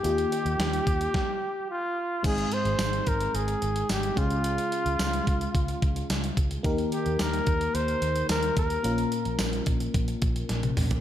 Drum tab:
CC |----------------|x---------------|----------------|----------------|
HH |xxxxxxxx--------|xxxxxxxxxxxxxxxx|xxxxxxxxxxxxxxxx|xxxxxxxxxxxxxxxx|
TB |----------------|----x-------x---|----x-------x---|----x-------x---|
SD |----o---o-------|----o-------o---|----o-------o---|----o-------o---|
T1 |----------------|----------------|----------------|----------------|
T2 |----------------|----------------|----------------|----------------|
FT |----------------|----------------|----------------|----------------|
BD |------o-o-------|o-----o-------o-|------o-o-o---o-|o-----o-------o-|

CC |----------------|
HH |xxxxxxxxxxxxxxox|
TB |----x-----------|
SD |----o-------o---|
T1 |-------------o--|
T2 |--------------o-|
FT |---------------o|
BD |------o-o-o-----|